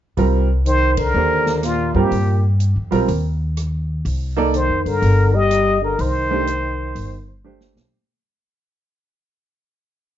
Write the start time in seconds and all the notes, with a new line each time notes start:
0.17 C2 G3 C4 F4 A#4, open hi-hat
0.66 D#3 C5, closed hi-hat
0.97 D3 A#4, kick, ride
1.14 D#2 A#3 D4 G4 C5
1.46 snare
1.63 A#2 F4, cross-stick, snare, closed hi-hat
1.95 G2 A#2 G3 C4 F4 G4 A#4, kick
2.11 G2, open hi-hat
2.60 closed hi-hat
2.76 F2
2.91 B1 G3 C4 F4 A#4, open hi-hat
3.08 D#2, open hi-hat
3.57 cross-stick, closed hi-hat
4.05 C2, open hi-hat
4.37 A#3 D#4 A4 D5
4.54 D#3 C5, closed hi-hat
4.70 F2
4.86 G2 D3 A#4, open hi-hat
5.02 G1, open hi-hat
5.34 G3 D#5
5.51 cross-stick, closed hi-hat
5.82 D3 A#4
5.99 C2 D#3 C5, open hi-hat
6.31 A3 D4 G4 C5
6.47 closed hi-hat
6.95 G1, open hi-hat
7.44 A3 D4 G4 C5
7.61 snare
7.75 B1, snare